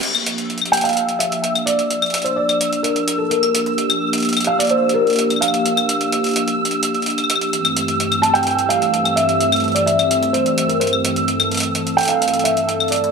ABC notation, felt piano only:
X:1
M:4/4
L:1/16
Q:1/4=128
K:Gdor
V:1 name="Felt piano"
z6 g f3 e4 d2- | d3 c d4 B3 A B3 z | z6 f d c2 B4 f2- | f8- f2 z6 |
z6 a g3 f4 e2- | e3 d e4 c3 B c3 z | z6 g f3 e4 d2 |]